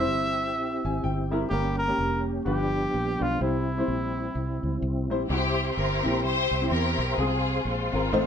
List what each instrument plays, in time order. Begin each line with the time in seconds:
Already playing: grand piano E3 G3, tonewheel organ C4 E4 G4, trumpet E5
0.00 grand piano C4 E4 C5
0.08 fingered electric bass G1
0.56 fingered electric bass A#1
0.85 fingered electric bass G#1, grand piano G#5
1.04 fingered electric bass G1, grand piano G5
1.31 grand piano G3 C4 E4 A#4 E5
1.49 fingered electric bass G1, grand piano G2 G3 A#3 C#4 A#4, tonewheel organ A#3 C#4, trumpet G4
1.78 trumpet A#4
1.87 grand piano G3 A#3 C#4 G4
1.98 fingered electric bass F1
2.45 fingered electric bass G1, grand piano G2 G3 D4 F4 B4, tonewheel organ F3 G3 B3 D4, trumpet G4
2.94 fingered electric bass A#1
3.20 fingered electric bass B1, grand piano G3 D4 F4 B4, trumpet F4
3.40 fingered electric bass C2, grand piano C3 G3 C4 E4 C5, tonewheel organ C4 E4, trumpet E4
3.77 grand piano G3 C4 E4 C5
3.88 fingered electric bass A#1
4.35 fingered electric bass C2
4.63 fingered electric bass C#2
4.82 fingered electric bass C2
5.10 fingered electric bass A#1, grand piano G3 C4 E4 C5
5.29 fingered electric bass C2, grand piano C3 C4 E4 F#4, string section C4 E4 G4, tonewheel organ G4 C5 E5 C6
5.37 grand piano G4
5.76 fingered electric bass G1, string section E4 G4 A#4
6.03 fingered electric bass A#1, grand piano C4 E4 G4
6.24 fingered electric bass C2, string section E4 G4 C5
6.51 fingered electric bass C2
6.61 grand piano C4 E4 G4
6.71 fingered electric bass E2, string section E4 G4 A#4
6.98 fingered electric bass B1
7.18 fingered electric bass C2, grand piano C3 C4 F4 G#4, string section C4 F4 G#4, tonewheel organ G#4 F5 C6
7.65 fingered electric bass A#1, string section G#3 C4 F4
7.92 fingered electric bass G#1, grand piano C4 F4 A#4
8.12 fingered electric bass A1, grand piano A2 A3 C4 D#4 F4 C5, tonewheel organ C5 D#5 F5